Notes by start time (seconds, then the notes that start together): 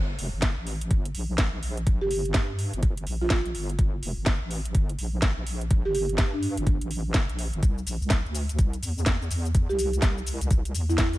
Already playing: G1
0.19 F1, open hi-hat
0.33 G1
0.42 kick, snare, closed hi-hat
0.57 A1
0.67 open hi-hat
0.81 closed hi-hat
0.91 G1, kick, closed hi-hat
1.05 closed hi-hat
1.15 A#1, open hi-hat
1.38 kick, snare, closed hi-hat
1.63 A#1, open hi-hat
1.77 closed hi-hat
1.87 kick, closed hi-hat
2.01 G1 G4
2.11 G4, open hi-hat
2.25 closed hi-hat
2.34 G2, kick, snare, closed hi-hat
2.59 open hi-hat
2.73 G1, closed hi-hat
2.83 kick, closed hi-hat
2.97 closed hi-hat
3.07 A#1, open hi-hat
3.22 F4
3.30 kick, snare, closed hi-hat
3.46 closed hi-hat
3.55 G1, open hi-hat
3.69 closed hi-hat
3.79 G1, kick, closed hi-hat
4.03 F1, open hi-hat
4.17 G1
4.26 kick, snare, closed hi-hat
4.41 A1
4.51 open hi-hat
4.65 closed hi-hat
4.75 G1, kick, closed hi-hat
4.89 closed hi-hat
4.99 A#1, open hi-hat
5.22 kick, snare, closed hi-hat
5.47 A#1, open hi-hat
5.61 closed hi-hat
5.71 kick, closed hi-hat
5.85 G1 G4
5.95 G4, open hi-hat
6.09 closed hi-hat
6.18 G2, kick, snare, closed hi-hat
6.33 D4
6.43 open hi-hat
6.57 G1, closed hi-hat
6.67 kick, closed hi-hat
6.81 A1, closed hi-hat
6.91 open hi-hat
7.14 G1, kick, snare, closed hi-hat
7.29 A#1, closed hi-hat
7.39 open hi-hat
7.53 G1, closed hi-hat
7.63 C2, kick, closed hi-hat, cabasa
7.78 cabasa
7.87 A#1, open hi-hat, cabasa
8.01 C2, cabasa
8.10 kick, snare, closed hi-hat, cabasa
8.25 D2, cabasa
8.35 open hi-hat, cabasa
8.49 closed hi-hat, cabasa
8.59 C2, kick, closed hi-hat, cabasa
8.73 closed hi-hat, cabasa
8.83 E2, open hi-hat, cabasa
8.98 cabasa
9.06 kick, snare, closed hi-hat, cabasa
9.22 cabasa
9.31 E2, open hi-hat, cabasa
9.45 closed hi-hat, cabasa
9.55 kick, closed hi-hat, cabasa
9.69 C2 G4, cabasa
9.79 G4, open hi-hat, cabasa
9.93 closed hi-hat, cabasa
10.02 C2, kick, snare, closed hi-hat, cabasa
10.18 cabasa
10.27 open hi-hat, cabasa
10.41 C2, closed hi-hat, cabasa
10.51 kick, closed hi-hat, cabasa
10.65 closed hi-hat, cabasa
10.75 E2, open hi-hat, cabasa
10.89 E4, cabasa
10.98 kick, snare, closed hi-hat, cabasa
11.13 closed hi-hat, cabasa